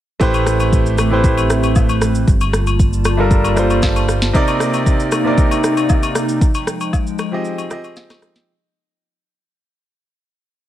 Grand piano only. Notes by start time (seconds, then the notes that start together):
0.20 A3 E4 G4 B4 C5
1.11 A3 E4 G4 B4 C5
3.17 G3 D4 F4 A4 A#4
3.56 G3 D4 F4 A4 C5
4.33 C3 C4 D#4 A#4 D5
5.24 C3 C4 D4 A#4 D5
5.32 D#4
7.31 F3 C4 G4 G#4 D#5
7.70 F3 C4 G4 G#4 D#5